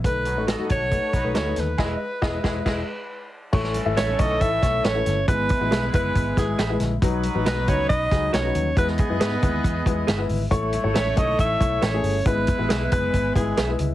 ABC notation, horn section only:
X:1
M:4/4
L:1/8
Q:1/4=138
K:E
V:1 name="Horn section"
z [F,DB] [B,Ad] [A,Fc]2 [F,DB]2 z | [G,EB] z [B,Gd] [G,E] [G,EB] z3 | [E,CA]6- [E,CA] z | [G,EB]6- [G,EB] z |
[F,DB]6- [F,DB] z | [B,Gd]6- [B,Gd] z | [A,Ec]6- [A,Ec] z | [G,EB]6- [G,EB] z |]